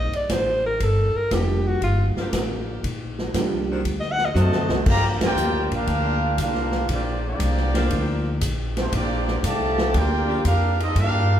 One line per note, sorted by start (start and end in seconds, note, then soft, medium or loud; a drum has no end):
0.00 0.11 A#1 medium
0.00 0.20 D#3 medium
0.00 0.20 D#3 loud
0.00 0.20 G3 medium
0.00 0.19 A#3 medium
0.00 0.20 A#3 medium
0.00 0.19 C4 medium
0.00 0.20 C4 medium
0.00 0.19 G4 loud
0.00 0.21 G4 medium
0.00 0.15 D#5 loud
0.13 0.34 D5 medium
0.13 muted upright bass stroke soft
0.13 ride soft
0.29 0.78 A1 medium
0.29 0.66 C5 medium
0.29 kick soft
0.29 snare medium
0.29 hi-hat pedal medium
0.29 ride medium
0.66 0.85 A#4 loud
0.80 1.13 G1 medium
0.80 1.18 A4 medium
0.80 kick soft
0.80 ride medium
1.15 1.35 A#4 loud
1.15 muted upright bass stroke soft
1.31 1.80 F1 medium
1.31 2.10 F3 medium
1.31 2.10 G3 medium
1.31 2.10 A#3 medium
1.31 2.10 D4 medium
1.31 2.11 G4 medium
1.31 1.68 G4 medium
1.31 kick soft
1.31 snare medium
1.31 hi-hat pedal medium
1.31 ride medium
1.67 1.82 F#4 loud
1.81 2.14 G1 medium
1.81 2.04 F4 medium
1.81 kick soft
1.81 ride medium
2.16 2.80 F3 loud
2.16 2.80 A#3 medium
2.16 2.80 D4 medium
2.16 2.80 G4 loud
2.16 muted upright bass stroke soft
2.16 snare medium
2.33 2.82 A1 medium
2.33 kick soft
2.33 snare medium
2.33 hi-hat pedal medium
2.33 ride medium
2.83 3.32 A#1 medium
2.83 kick soft
2.83 ride medium
3.19 snare medium
3.34 3.83 C2 medium
3.34 3.85 F3 medium
3.34 3.85 G3 medium
3.34 3.85 A#3 medium
3.34 3.85 D4 medium
3.34 3.85 G4 medium
3.34 kick soft
3.34 snare medium
3.34 hi-hat pedal medium
3.34 ride medium
3.70 3.80 D#3 medium
3.70 3.80 C4 medium
3.70 3.80 D4 medium
3.70 3.80 F#4 medium
3.85 4.34 D2 medium
3.85 kick soft
3.85 ride medium
4.00 4.13 D#5 medium
4.00 snare soft
4.12 4.27 F#5 loud
4.18 snare medium
4.25 4.77 D#5 medium
4.34 4.52 F#2 loud
4.34 4.82 C3 loud
4.34 4.58 D#3 loud
4.34 4.83 F#3 loud
4.34 4.82 A3 loud
4.34 4.58 C4 medium
4.34 4.58 D4 medium
4.34 4.58 F#4 loud
4.34 4.84 F#4 medium
4.34 4.84 C5 medium
4.34 4.84 D#5 medium
4.34 4.84 A5 loud
4.34 hi-hat pedal medium
4.34 high tom medium
4.52 4.68 D2 medium
4.52 snare medium
4.68 4.84 C2 medium
4.68 snare medium
4.85 5.19 G2 medium
4.85 5.02 D3 loud
4.85 6.29 F3 loud
4.85 5.02 F3 loud
4.85 6.29 A#3 medium
4.85 5.02 A#3 medium
4.85 6.28 D4 medium
4.85 6.29 G4 loud
4.85 5.04 G4 loud
4.85 5.04 A#5 loud
4.85 kick medium
4.85 crash loud
4.89 5.04 D5 loud
4.89 5.04 F5 loud
5.20 5.68 A#3 medium
5.20 5.68 D4 medium
5.20 5.68 G4 medium
5.20 muted upright bass stroke soft
5.20 snare loud
5.20 ride medium
5.25 5.70 F4 medium
5.25 5.71 A#4 loud
5.25 5.71 D5 loud
5.25 5.71 G5 loud
5.36 5.53 D#2 medium
5.36 hi-hat pedal medium
5.53 5.69 D2 medium
5.70 5.86 A#1 medium
5.70 6.37 A#3 medium
5.70 6.38 D4 medium
5.70 6.38 F4 loud
5.70 ride medium
5.75 6.40 D4 medium
5.75 6.40 G4 medium
5.75 6.40 A#4 medium
5.75 6.40 F5 loud
5.87 6.37 D2 medium
5.87 kick soft
5.87 ride medium
6.38 6.87 C2 medium
6.38 6.86 A#3 medium
6.38 6.86 D4 medium
6.38 6.87 D4 medium
6.38 6.86 F4 medium
6.38 6.87 G4 medium
6.38 6.87 A#4 medium
6.38 kick soft
6.38 hi-hat pedal medium
6.38 ride medium
6.42 6.87 F5 medium
6.55 snare soft
6.72 snare medium
6.89 7.38 A#1 medium
6.89 7.23 F3 medium
6.89 7.23 A#3 medium
6.89 7.26 A#3 medium
6.89 7.22 D4 medium
6.89 7.26 F4 medium
6.89 7.26 D5 loud
6.89 kick soft
6.89 ride medium
6.93 7.26 G4 medium
7.23 8.21 F3 medium
7.23 8.21 A#3 medium
7.23 8.21 D4 medium
7.23 8.23 D5 medium
7.28 8.23 A#3 medium
7.28 8.23 F4 medium
7.28 8.23 G4 medium
7.39 7.89 C2 loud
7.39 kick soft
7.39 hi-hat pedal medium
7.39 ride medium
7.57 snare soft
7.73 8.37 F3 loud
7.73 8.37 A#3 medium
7.73 8.37 D4 medium
7.73 8.37 G4 loud
7.73 snare medium
7.73 ride medium
7.90 8.40 D2 medium
7.90 kick soft
7.90 ride medium
8.41 8.91 A#1 medium
8.41 kick soft
8.41 hi-hat pedal medium
8.41 ride medium
8.77 8.93 A3 medium
8.77 8.92 C4 medium
8.77 8.92 D4 medium
8.77 8.93 F4 medium
8.77 8.92 C5 medium
8.77 snare medium
8.77 ride medium
8.92 9.41 A#1 loud
8.92 9.40 F3 medium
8.92 9.40 A#3 medium
8.92 9.41 A#3 medium
8.92 9.40 D4 medium
8.92 9.41 F4 medium
8.92 9.41 G4 medium
8.92 9.41 D5 loud
8.92 kick soft
8.92 ride medium
9.28 snare soft
9.43 9.92 C2 loud
9.43 9.94 D3 medium
9.43 9.95 F3 medium
9.43 9.95 A3 medium
9.43 9.95 G4 medium
9.43 9.95 D5 medium
9.43 9.95 F5 medium
9.43 9.95 A5 loud
9.43 kick soft
9.43 hi-hat pedal medium
9.43 ride medium
9.78 snare medium
9.94 10.43 D2 medium
9.94 10.45 A#3 loud
9.94 10.44 D4 loud
9.94 10.46 F4 medium
9.94 10.45 G4 loud
9.94 10.45 A#4 medium
9.94 10.46 D5 medium
9.94 10.46 G5 loud
9.94 kick soft
9.94 ride medium
10.28 10.39 F3 medium
10.28 10.38 A#3 medium
10.28 10.39 D4 medium
10.28 10.39 G4 loud
10.44 10.94 F2 medium
10.44 10.78 A#3 medium
10.44 10.78 D4 medium
10.44 10.78 F4 medium
10.44 10.78 G4 medium
10.44 10.78 A#4 medium
10.44 10.78 F5 medium
10.44 kick soft
10.44 hi-hat pedal medium
10.44 ride medium
10.80 10.97 C4 medium
10.80 10.96 D#4 medium
10.80 10.97 F4 medium
10.80 10.96 A4 medium
10.80 10.97 D#5 loud
10.80 ride medium
10.95 11.40 G2 loud
10.95 11.40 A#3 medium
10.95 11.40 D4 medium
10.95 11.40 F4 medium
10.95 kick soft
10.95 ride medium
10.99 11.40 D4 medium
10.99 11.40 G4 medium
10.99 11.40 A#4 medium
10.99 11.40 F5 loud